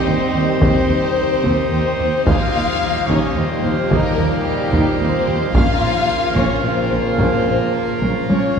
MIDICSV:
0, 0, Header, 1, 11, 480
1, 0, Start_track
1, 0, Tempo, 546946
1, 534, Time_signature, 3, 2, 24, 8
1, 5818, Tempo, 556586
1, 7512, End_track
2, 0, Start_track
2, 0, Title_t, "Violin section"
2, 0, Program_c, 0, 48
2, 57, Note_on_c, 0, 72, 72
2, 529, Note_off_c, 0, 72, 0
2, 539, Note_on_c, 0, 72, 81
2, 1482, Note_off_c, 0, 72, 0
2, 1504, Note_on_c, 0, 72, 65
2, 1983, Note_off_c, 0, 72, 0
2, 1994, Note_on_c, 0, 77, 82
2, 2712, Note_on_c, 0, 73, 68
2, 2715, Note_off_c, 0, 77, 0
2, 2945, Note_on_c, 0, 72, 53
2, 2951, Note_off_c, 0, 73, 0
2, 3419, Note_on_c, 0, 70, 77
2, 3425, Note_off_c, 0, 72, 0
2, 3890, Note_off_c, 0, 70, 0
2, 3901, Note_on_c, 0, 67, 69
2, 4365, Note_on_c, 0, 72, 68
2, 4370, Note_off_c, 0, 67, 0
2, 4856, Note_off_c, 0, 72, 0
2, 4861, Note_on_c, 0, 77, 84
2, 5563, Note_off_c, 0, 77, 0
2, 5577, Note_on_c, 0, 73, 70
2, 5814, Note_on_c, 0, 72, 60
2, 5817, Note_off_c, 0, 73, 0
2, 6293, Note_off_c, 0, 72, 0
2, 6303, Note_on_c, 0, 72, 66
2, 6771, Note_off_c, 0, 72, 0
2, 6787, Note_on_c, 0, 70, 46
2, 7249, Note_on_c, 0, 73, 39
2, 7263, Note_off_c, 0, 70, 0
2, 7512, Note_off_c, 0, 73, 0
2, 7512, End_track
3, 0, Start_track
3, 0, Title_t, "Pipe organ"
3, 0, Program_c, 1, 19
3, 0, Note_on_c, 1, 63, 68
3, 0, Note_on_c, 1, 67, 68
3, 0, Note_on_c, 1, 72, 66
3, 0, Note_on_c, 1, 75, 68
3, 1951, Note_off_c, 1, 72, 0
3, 1965, Note_off_c, 1, 75, 0
3, 1966, Note_off_c, 1, 67, 0
3, 1983, Note_on_c, 1, 58, 52
3, 1983, Note_on_c, 1, 75, 50
3, 1984, Note_off_c, 1, 63, 0
3, 1984, Note_on_c, 1, 67, 50
3, 1986, Note_on_c, 1, 77, 53
3, 4826, Note_off_c, 1, 67, 0
3, 4852, Note_off_c, 1, 58, 0
3, 4855, Note_off_c, 1, 77, 0
3, 4860, Note_off_c, 1, 75, 0
3, 4864, Note_on_c, 1, 70, 60
3, 4870, Note_on_c, 1, 58, 61
3, 4873, Note_on_c, 1, 77, 59
3, 4875, Note_on_c, 1, 65, 60
3, 7512, Note_off_c, 1, 58, 0
3, 7512, Note_off_c, 1, 65, 0
3, 7512, Note_off_c, 1, 70, 0
3, 7512, Note_off_c, 1, 77, 0
3, 7512, End_track
4, 0, Start_track
4, 0, Title_t, "Viola section"
4, 0, Program_c, 2, 48
4, 0, Note_on_c, 2, 67, 61
4, 57, Note_on_c, 2, 60, 54
4, 127, Note_off_c, 2, 60, 0
4, 300, Note_on_c, 2, 60, 49
4, 370, Note_off_c, 2, 60, 0
4, 542, Note_on_c, 2, 60, 57
4, 762, Note_off_c, 2, 60, 0
4, 784, Note_on_c, 2, 60, 42
4, 854, Note_off_c, 2, 60, 0
4, 1264, Note_on_c, 2, 60, 54
4, 1486, Note_off_c, 2, 60, 0
4, 1507, Note_on_c, 2, 60, 44
4, 1577, Note_off_c, 2, 60, 0
4, 1745, Note_on_c, 2, 60, 40
4, 1777, Note_off_c, 2, 67, 0
4, 1816, Note_off_c, 2, 60, 0
4, 2004, Note_on_c, 2, 63, 54
4, 2008, Note_on_c, 2, 67, 52
4, 2223, Note_off_c, 2, 63, 0
4, 2251, Note_on_c, 2, 63, 39
4, 2321, Note_off_c, 2, 63, 0
4, 2710, Note_on_c, 2, 63, 56
4, 2933, Note_off_c, 2, 63, 0
4, 2959, Note_on_c, 2, 63, 54
4, 3030, Note_off_c, 2, 63, 0
4, 3186, Note_on_c, 2, 63, 50
4, 3256, Note_off_c, 2, 63, 0
4, 3438, Note_on_c, 2, 63, 65
4, 3655, Note_off_c, 2, 63, 0
4, 3682, Note_on_c, 2, 63, 40
4, 3753, Note_off_c, 2, 63, 0
4, 4144, Note_on_c, 2, 63, 62
4, 4365, Note_off_c, 2, 63, 0
4, 4387, Note_on_c, 2, 63, 50
4, 4458, Note_off_c, 2, 63, 0
4, 4633, Note_on_c, 2, 63, 51
4, 4703, Note_off_c, 2, 63, 0
4, 4838, Note_off_c, 2, 67, 0
4, 4875, Note_on_c, 2, 65, 57
4, 4878, Note_on_c, 2, 61, 57
4, 5093, Note_off_c, 2, 61, 0
4, 5113, Note_on_c, 2, 61, 43
4, 5183, Note_off_c, 2, 61, 0
4, 5582, Note_on_c, 2, 61, 49
4, 5803, Note_off_c, 2, 61, 0
4, 5816, Note_on_c, 2, 61, 45
4, 5885, Note_off_c, 2, 61, 0
4, 6068, Note_on_c, 2, 61, 36
4, 6137, Note_off_c, 2, 61, 0
4, 6296, Note_on_c, 2, 61, 45
4, 6519, Note_off_c, 2, 61, 0
4, 6547, Note_on_c, 2, 61, 28
4, 6616, Note_off_c, 2, 61, 0
4, 7018, Note_on_c, 2, 61, 39
4, 7241, Note_off_c, 2, 61, 0
4, 7254, Note_on_c, 2, 61, 34
4, 7323, Note_off_c, 2, 61, 0
4, 7512, Note_off_c, 2, 65, 0
4, 7512, End_track
5, 0, Start_track
5, 0, Title_t, "Violin section"
5, 0, Program_c, 3, 48
5, 68, Note_on_c, 3, 60, 76
5, 536, Note_off_c, 3, 60, 0
5, 546, Note_on_c, 3, 60, 68
5, 1486, Note_off_c, 3, 60, 0
5, 1510, Note_on_c, 3, 60, 65
5, 1986, Note_off_c, 3, 60, 0
5, 1997, Note_on_c, 3, 65, 69
5, 2702, Note_off_c, 3, 65, 0
5, 2714, Note_on_c, 3, 61, 54
5, 2947, Note_off_c, 3, 61, 0
5, 2958, Note_on_c, 3, 60, 56
5, 3432, Note_off_c, 3, 60, 0
5, 3433, Note_on_c, 3, 58, 62
5, 3892, Note_on_c, 3, 55, 67
5, 3906, Note_off_c, 3, 58, 0
5, 4374, Note_off_c, 3, 55, 0
5, 4393, Note_on_c, 3, 60, 70
5, 4860, Note_off_c, 3, 60, 0
5, 4865, Note_on_c, 3, 65, 82
5, 5565, Note_off_c, 3, 65, 0
5, 5585, Note_on_c, 3, 61, 58
5, 5817, Note_off_c, 3, 61, 0
5, 5823, Note_on_c, 3, 60, 57
5, 6288, Note_off_c, 3, 60, 0
5, 6298, Note_on_c, 3, 60, 55
5, 6768, Note_off_c, 3, 60, 0
5, 6780, Note_on_c, 3, 58, 39
5, 7260, Note_off_c, 3, 58, 0
5, 7265, Note_on_c, 3, 73, 49
5, 7512, Note_off_c, 3, 73, 0
5, 7512, End_track
6, 0, Start_track
6, 0, Title_t, "French horn section"
6, 0, Program_c, 4, 60
6, 0, Note_on_c, 4, 55, 77
6, 0, Note_on_c, 4, 60, 76
6, 1708, Note_off_c, 4, 60, 0
6, 1709, Note_off_c, 4, 55, 0
6, 1986, Note_on_c, 4, 63, 57
6, 1996, Note_on_c, 4, 55, 59
6, 4827, Note_off_c, 4, 63, 0
6, 4832, Note_off_c, 4, 55, 0
6, 4874, Note_on_c, 4, 58, 74
6, 4877, Note_on_c, 4, 49, 66
6, 7229, Note_off_c, 4, 58, 0
6, 7230, Note_off_c, 4, 49, 0
6, 7257, Note_on_c, 4, 61, 57
6, 7512, Note_off_c, 4, 61, 0
6, 7512, End_track
7, 0, Start_track
7, 0, Title_t, "Trombone section"
7, 0, Program_c, 5, 61
7, 0, Note_on_c, 5, 51, 67
7, 1711, Note_off_c, 5, 51, 0
7, 1998, Note_on_c, 5, 46, 55
7, 2001, Note_on_c, 5, 53, 56
7, 4833, Note_off_c, 5, 46, 0
7, 4834, Note_off_c, 5, 53, 0
7, 4859, Note_on_c, 5, 46, 60
7, 4861, Note_on_c, 5, 53, 65
7, 7221, Note_off_c, 5, 46, 0
7, 7222, Note_off_c, 5, 53, 0
7, 7254, Note_on_c, 5, 61, 47
7, 7512, Note_off_c, 5, 61, 0
7, 7512, End_track
8, 0, Start_track
8, 0, Title_t, "Cello section"
8, 0, Program_c, 6, 48
8, 57, Note_on_c, 6, 39, 47
8, 127, Note_off_c, 6, 39, 0
8, 294, Note_on_c, 6, 39, 42
8, 364, Note_off_c, 6, 39, 0
8, 539, Note_on_c, 6, 39, 70
8, 609, Note_off_c, 6, 39, 0
8, 777, Note_on_c, 6, 39, 47
8, 847, Note_off_c, 6, 39, 0
8, 1259, Note_on_c, 6, 39, 54
8, 1329, Note_off_c, 6, 39, 0
8, 1505, Note_on_c, 6, 39, 43
8, 1575, Note_off_c, 6, 39, 0
8, 1747, Note_on_c, 6, 39, 40
8, 1818, Note_off_c, 6, 39, 0
8, 1991, Note_on_c, 6, 39, 62
8, 2061, Note_off_c, 6, 39, 0
8, 2244, Note_on_c, 6, 39, 43
8, 2314, Note_off_c, 6, 39, 0
8, 2708, Note_on_c, 6, 39, 55
8, 2778, Note_off_c, 6, 39, 0
8, 2957, Note_on_c, 6, 39, 44
8, 3027, Note_off_c, 6, 39, 0
8, 3190, Note_on_c, 6, 39, 44
8, 3260, Note_off_c, 6, 39, 0
8, 3423, Note_on_c, 6, 39, 66
8, 3493, Note_off_c, 6, 39, 0
8, 3672, Note_on_c, 6, 39, 46
8, 3742, Note_off_c, 6, 39, 0
8, 4145, Note_on_c, 6, 39, 66
8, 4215, Note_off_c, 6, 39, 0
8, 4385, Note_on_c, 6, 39, 52
8, 4455, Note_off_c, 6, 39, 0
8, 4626, Note_on_c, 6, 39, 51
8, 4696, Note_off_c, 6, 39, 0
8, 4871, Note_on_c, 6, 46, 78
8, 4941, Note_off_c, 6, 46, 0
8, 5111, Note_on_c, 6, 46, 46
8, 5181, Note_off_c, 6, 46, 0
8, 5587, Note_on_c, 6, 46, 56
8, 5657, Note_off_c, 6, 46, 0
8, 5829, Note_on_c, 6, 46, 41
8, 5898, Note_off_c, 6, 46, 0
8, 6070, Note_on_c, 6, 46, 35
8, 6139, Note_off_c, 6, 46, 0
8, 6301, Note_on_c, 6, 46, 50
8, 6370, Note_off_c, 6, 46, 0
8, 6540, Note_on_c, 6, 46, 32
8, 6609, Note_off_c, 6, 46, 0
8, 7019, Note_on_c, 6, 46, 39
8, 7088, Note_off_c, 6, 46, 0
8, 7260, Note_on_c, 6, 46, 31
8, 7329, Note_off_c, 6, 46, 0
8, 7512, End_track
9, 0, Start_track
9, 0, Title_t, "Double bass section"
9, 0, Program_c, 7, 48
9, 52, Note_on_c, 7, 39, 44
9, 123, Note_off_c, 7, 39, 0
9, 292, Note_on_c, 7, 39, 48
9, 363, Note_off_c, 7, 39, 0
9, 527, Note_on_c, 7, 39, 61
9, 598, Note_off_c, 7, 39, 0
9, 776, Note_on_c, 7, 39, 44
9, 846, Note_off_c, 7, 39, 0
9, 1252, Note_on_c, 7, 39, 58
9, 1322, Note_off_c, 7, 39, 0
9, 1499, Note_on_c, 7, 39, 39
9, 1570, Note_off_c, 7, 39, 0
9, 1741, Note_on_c, 7, 39, 43
9, 1811, Note_off_c, 7, 39, 0
9, 1989, Note_on_c, 7, 39, 54
9, 2059, Note_off_c, 7, 39, 0
9, 2232, Note_on_c, 7, 39, 43
9, 2302, Note_off_c, 7, 39, 0
9, 2711, Note_on_c, 7, 39, 63
9, 2781, Note_off_c, 7, 39, 0
9, 2946, Note_on_c, 7, 39, 45
9, 3017, Note_off_c, 7, 39, 0
9, 3186, Note_on_c, 7, 39, 48
9, 3256, Note_off_c, 7, 39, 0
9, 3425, Note_on_c, 7, 39, 61
9, 3495, Note_off_c, 7, 39, 0
9, 3660, Note_on_c, 7, 39, 45
9, 3730, Note_off_c, 7, 39, 0
9, 4139, Note_on_c, 7, 39, 68
9, 4209, Note_off_c, 7, 39, 0
9, 4382, Note_on_c, 7, 39, 49
9, 4452, Note_off_c, 7, 39, 0
9, 4622, Note_on_c, 7, 39, 52
9, 4693, Note_off_c, 7, 39, 0
9, 4861, Note_on_c, 7, 34, 67
9, 4931, Note_off_c, 7, 34, 0
9, 5096, Note_on_c, 7, 34, 43
9, 5166, Note_off_c, 7, 34, 0
9, 5577, Note_on_c, 7, 34, 59
9, 5647, Note_off_c, 7, 34, 0
9, 5815, Note_on_c, 7, 34, 38
9, 5884, Note_off_c, 7, 34, 0
9, 6048, Note_on_c, 7, 34, 38
9, 6117, Note_off_c, 7, 34, 0
9, 6290, Note_on_c, 7, 34, 46
9, 6359, Note_off_c, 7, 34, 0
9, 6527, Note_on_c, 7, 34, 31
9, 6596, Note_off_c, 7, 34, 0
9, 7013, Note_on_c, 7, 34, 46
9, 7082, Note_off_c, 7, 34, 0
9, 7256, Note_on_c, 7, 34, 28
9, 7325, Note_off_c, 7, 34, 0
9, 7512, End_track
10, 0, Start_track
10, 0, Title_t, "Tuba"
10, 0, Program_c, 8, 58
10, 57, Note_on_c, 8, 39, 54
10, 152, Note_off_c, 8, 39, 0
10, 293, Note_on_c, 8, 39, 51
10, 389, Note_off_c, 8, 39, 0
10, 535, Note_on_c, 8, 39, 57
10, 631, Note_off_c, 8, 39, 0
10, 778, Note_on_c, 8, 39, 39
10, 874, Note_off_c, 8, 39, 0
10, 1260, Note_on_c, 8, 39, 65
10, 1356, Note_off_c, 8, 39, 0
10, 1510, Note_on_c, 8, 39, 43
10, 1606, Note_off_c, 8, 39, 0
10, 1756, Note_on_c, 8, 39, 46
10, 1852, Note_off_c, 8, 39, 0
10, 2002, Note_on_c, 8, 39, 55
10, 2096, Note_off_c, 8, 39, 0
10, 2240, Note_on_c, 8, 39, 40
10, 2334, Note_off_c, 8, 39, 0
10, 2718, Note_on_c, 8, 39, 61
10, 2812, Note_off_c, 8, 39, 0
10, 2955, Note_on_c, 8, 39, 44
10, 3050, Note_off_c, 8, 39, 0
10, 3195, Note_on_c, 8, 39, 49
10, 3289, Note_off_c, 8, 39, 0
10, 3431, Note_on_c, 8, 39, 61
10, 3526, Note_off_c, 8, 39, 0
10, 3677, Note_on_c, 8, 39, 43
10, 3770, Note_off_c, 8, 39, 0
10, 4148, Note_on_c, 8, 39, 68
10, 4242, Note_off_c, 8, 39, 0
10, 4377, Note_on_c, 8, 39, 52
10, 4474, Note_off_c, 8, 39, 0
10, 4621, Note_on_c, 8, 39, 52
10, 4718, Note_off_c, 8, 39, 0
10, 4860, Note_on_c, 8, 34, 65
10, 4957, Note_off_c, 8, 34, 0
10, 5098, Note_on_c, 8, 34, 44
10, 5194, Note_off_c, 8, 34, 0
10, 5582, Note_on_c, 8, 34, 66
10, 5677, Note_off_c, 8, 34, 0
10, 5821, Note_on_c, 8, 34, 42
10, 5916, Note_off_c, 8, 34, 0
10, 6057, Note_on_c, 8, 34, 39
10, 6152, Note_off_c, 8, 34, 0
10, 6294, Note_on_c, 8, 34, 43
10, 6391, Note_off_c, 8, 34, 0
10, 6539, Note_on_c, 8, 34, 32
10, 6635, Note_off_c, 8, 34, 0
10, 7019, Note_on_c, 8, 34, 47
10, 7115, Note_off_c, 8, 34, 0
10, 7251, Note_on_c, 8, 34, 31
10, 7349, Note_off_c, 8, 34, 0
10, 7512, End_track
11, 0, Start_track
11, 0, Title_t, "Taiko and cinematic ensemble drums"
11, 540, Note_on_c, 9, 41, 82
11, 627, Note_off_c, 9, 41, 0
11, 1262, Note_on_c, 9, 41, 64
11, 1350, Note_off_c, 9, 41, 0
11, 1991, Note_on_c, 9, 41, 87
11, 2079, Note_off_c, 9, 41, 0
11, 2715, Note_on_c, 9, 41, 60
11, 2803, Note_off_c, 9, 41, 0
11, 3432, Note_on_c, 9, 41, 85
11, 3519, Note_off_c, 9, 41, 0
11, 4144, Note_on_c, 9, 41, 66
11, 4232, Note_off_c, 9, 41, 0
11, 4867, Note_on_c, 9, 41, 87
11, 4955, Note_off_c, 9, 41, 0
11, 5584, Note_on_c, 9, 41, 61
11, 5672, Note_off_c, 9, 41, 0
11, 6297, Note_on_c, 9, 41, 78
11, 6383, Note_off_c, 9, 41, 0
11, 7017, Note_on_c, 9, 48, 53
11, 7103, Note_off_c, 9, 48, 0
11, 7255, Note_on_c, 9, 48, 61
11, 7342, Note_off_c, 9, 48, 0
11, 7512, End_track
0, 0, End_of_file